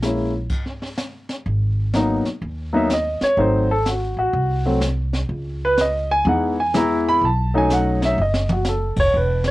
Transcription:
Already playing: A#1
0.02 G#3 A#3 C#4 E4, snare, hi-hat pedal
0.50 brush sweep, kick, crash
0.66 snare
0.82 snare
0.97 snare, hi-hat pedal
1.29 snare
1.46 G#1, brush sweep
1.93 F#3 A#3 B3 D#4, snare, hi-hat pedal
2.25 muted upright bass stroke, snare
2.42 D#2, brush sweep
2.73 F#3 A#3 B3 D#4 E5
2.90 snare, hi-hat pedal
2.94 D#5
3.21 C#5, muted upright bass stroke, snare
3.37 G#1 F#3 A3 C4 D#4 C5, brush sweep
3.71 A4
3.86 F#4, snare, hi-hat pedal
4.17 A1 F#4
4.33 C2, brush sweep
4.66 F#3 A3 C4 F#4
4.81 snare, hi-hat pedal
5.13 snare
5.29 C#2, brush sweep
5.65 B4
5.77 D#5, snare, hi-hat pedal
6.12 G#5
6.25 E2 E3 G#3 B3 D#4 F#5, brush sweep
6.60 G#5
6.74 E3 G#3 B3 E4 A#5, snare, hi-hat pedal
7.09 B5
7.21 B1 A5, brush sweep
7.54 F#3 A3 C#4 D#4 G#5
7.70 F#5, snare, hi-hat pedal
8.02 E5, snare
8.18 F#1 D#5
8.34 snare
8.49 F#4, mid tom
8.65 snare, hi-hat pedal
8.69 A4
8.96 F1 C#5, kick, crash
9.12 E1, brush sweep
9.17 B4
9.44 C#5, snare

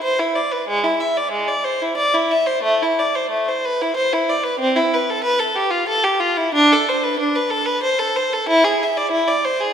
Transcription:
0.04 C5
0.19 E4
0.35 D5
0.51 B4
0.68 G#3
0.84 E4
1.00 E5
1.17 D5
1.31 G#3
1.48 D5
1.64 C5
1.82 E4
1.97 D5
2.14 E4
2.31 E5
2.46 C5
2.63 A3
2.82 E4
2.99 D5
3.15 C5
3.30 A3
3.48 C5
3.65 B4
3.81 E4
3.96 C5
4.13 E4
4.29 D5
4.43 B4
4.59 C4
4.76 E4
4.93 B4
5.10 A4
5.24 B4
5.39 A4
5.55 G4
5.71 F4
5.89 A4
6.03 G4
6.20 F4
6.37 E4
6.54 D4
6.72 A4
6.88 C5
7.03 B4
7.19 D4
7.35 B4
7.50 A4
7.65 B4
7.83 C5
7.98 A4
8.16 C5
8.33 A4
8.49 E4
8.65 G#4
8.83 E5
8.97 D5
9.11 E4
9.27 D5
9.44 C5
9.60 G#4

